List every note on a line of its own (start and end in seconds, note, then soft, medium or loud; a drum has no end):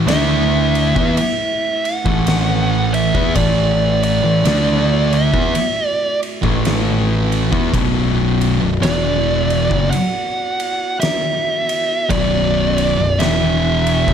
0.00 7.69 A3 medium
0.00 3.32 E4 medium
0.00 7.69 B4 loud
0.06 0.91 D2 medium
0.06 0.95 D3 medium
0.06 0.96 A3 medium
0.06 0.96 D4 loud
0.06 1.13 E5 medium
0.06 snare loud
0.06 ride loud
0.75 ride medium
0.96 1.16 E2 medium
0.96 1.16 E3 medium
0.96 1.17 B3 medium
0.96 kick loud
1.17 1.87 E5 loud
1.17 ride loud
1.85 2.97 F#5 loud
1.85 ride medium
2.05 3.11 A1 loud
2.05 3.14 A2 medium
2.05 3.14 E3 medium
2.05 3.14 A3 loud
2.05 kick loud
2.27 snare loud
2.27 ride loud
2.94 3.35 E5 medium
2.94 ride medium
3.14 3.34 E2 loud
3.14 3.35 E3 medium
3.14 3.35 B3 medium
3.14 kick loud
3.35 4.20 A1 loud
3.35 4.23 A2 medium
3.35 4.24 E3 medium
3.35 4.24 A3 loud
3.35 14.14 F#4 medium
3.35 4.03 D5 medium
3.35 kick loud
3.35 ride loud
4.03 5.14 D5 medium
4.03 ride medium
4.23 4.43 A1 medium
4.23 4.45 A2 medium
4.23 4.45 E3 medium
4.44 5.29 D2 medium
4.44 5.32 D3 medium
4.44 5.33 A3 medium
4.44 5.33 D4 medium
4.44 snare loud
4.44 ride loud
5.13 5.86 E5 medium
5.13 ride medium
5.33 5.53 E2 medium
5.33 5.53 E3 medium
5.33 5.54 B3 medium
5.33 kick loud
5.55 ride loud
5.86 6.19 D5 medium
6.23 ride medium
6.42 7.48 A1 medium
6.42 7.51 A2 medium
6.42 7.51 E3 medium
6.42 7.51 A3 medium
6.42 kick loud
6.65 snare loud
6.65 ride medium
7.32 ride medium
7.52 7.72 E2 medium
7.52 7.72 E3 medium
7.52 7.72 B3 medium
7.52 kick loud
7.73 8.57 B0 loud
7.73 8.60 B1 medium
7.73 8.61 F#2 loud
7.73 8.61 B2 loud
7.73 14.14 B3 medium
7.73 12.06 D5 loud
7.73 kick loud
7.73 ride loud
8.41 ride medium
8.61 8.81 B0 medium
8.61 8.81 B1 medium
8.61 8.82 F#2 medium
8.82 9.66 E1 medium
8.82 9.69 E2 medium
8.82 9.69 B2 medium
8.82 9.70 E3 loud
8.82 9.90 D5 medium
8.82 snare loud
8.82 ride medium
9.50 ride medium
9.71 9.90 F#1 medium
9.71 9.91 F#2 medium
9.71 9.91 C#3 medium
9.71 kick medium
9.91 10.96 F#5 loud
9.91 ride medium
10.60 ride medium
11.00 12.13 E5 loud
11.00 snare loud
11.00 ride loud
11.69 ride medium
12.10 12.94 B0 medium
12.10 12.97 B1 medium
12.10 12.98 F#2 loud
12.10 12.98 B2 medium
12.10 13.23 D5 medium
12.10 14.14 D5 medium
12.10 kick loud
12.10 ride loud
12.78 ride medium
12.98 13.18 B0 medium
12.98 13.19 B1 medium
12.98 13.20 F#2 medium
13.18 14.03 E1 medium
13.18 14.06 E2 loud
13.18 14.07 B2 medium
13.18 14.07 E3 medium
13.18 14.14 E5 medium
13.18 snare loud
13.18 ride medium
13.87 ride medium
14.08 14.14 F#1 medium
14.08 14.14 F#2 medium
14.08 14.14 C#3 medium
14.08 kick loud